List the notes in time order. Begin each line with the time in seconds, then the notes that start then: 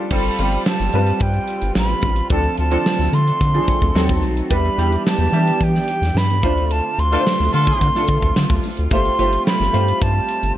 Already playing: G3 D4 F4 G4 A4 C5
0.11 G1 G3 C4 F4 A4 B5, kick, crash
0.24 closed hi-hat
0.39 G1 G3 C4 F4 G4, closed hi-hat
0.52 closed hi-hat
0.66 A5, snare
0.79 G1, snare, closed hi-hat
0.93 G2 G3 C4 F4 B4, closed hi-hat
1.07 closed hi-hat
1.20 G2 G5, kick, closed hi-hat
1.34 closed hi-hat
1.48 closed hi-hat
1.62 G1, closed hi-hat
1.75 A1 B5, snare
1.89 closed hi-hat
2.02 A1, kick, closed hi-hat
2.16 closed hi-hat
2.30 D2 D3 F3 A3 C4 D4 A4 A5, kick, closed hi-hat
2.44 closed hi-hat
2.58 D2 A5, closed hi-hat
2.71 F3 C4 D4 A4, closed hi-hat
2.86 snare
2.99 D2, snare, closed hi-hat
3.13 D3 C6, closed hi-hat
3.28 closed hi-hat
3.41 D3, kick, closed hi-hat
3.54 F3 C4 D4 G#4, closed hi-hat
3.62 A4
3.68 kick, closed hi-hat
3.82 D2, kick, closed hi-hat
3.94 D#2 D#3 F#3 C4 D#4 F#4 A4, snare
4.09 kick, closed hi-hat
4.23 B1, closed hi-hat
4.37 closed hi-hat
4.50 E2 E3 G3 B3 D4 E4 G4 B4 B5, kick, closed hi-hat
4.65 closed hi-hat
4.78 E2 G3 D4 E4 G4, closed hi-hat
4.92 closed hi-hat
5.07 A5, snare
5.18 E2, closed hi-hat
5.33 E3 G3 D4 E4 G4, closed hi-hat
5.47 closed hi-hat
5.61 E3 G5, kick, closed hi-hat
5.75 snare
5.88 closed hi-hat
6.02 E2, snare, closed hi-hat
6.15 G2 B5, snare
6.30 closed hi-hat
6.42 D2 D3 A3 C4 D4 F4 C5, kick, closed hi-hat
6.58 closed hi-hat
6.71 A5, closed hi-hat
6.98 D2 C6, closed hi-hat
7.12 A3 D4 F4 A4 B4, closed hi-hat
7.20 C5
7.27 snare
7.40 D2, snare
7.53 D3 D4 F4 A4 C6, open hi-hat
7.67 kick, closed hi-hat
7.81 D3, kick, closed hi-hat
7.95 A3 D4 F4 A4, snare
8.08 D3, kick, closed hi-hat
8.22 D2, kick, closed hi-hat
8.36 D3, snare
8.50 D2, kick, closed hi-hat
8.63 open hi-hat
8.77 D2, closed hi-hat
8.91 G1 G3 A3 F4 G4 C5 C6, kick, closed hi-hat
9.05 closed hi-hat
9.19 G1 A3 F4 G4 C5, closed hi-hat
9.33 closed hi-hat
9.47 B5, snare
9.60 G1, snare, closed hi-hat
9.73 G2 A3 F4 G4 C5, closed hi-hat
9.88 closed hi-hat
10.02 G2 A5, kick, closed hi-hat
10.28 closed hi-hat
10.43 G1, closed hi-hat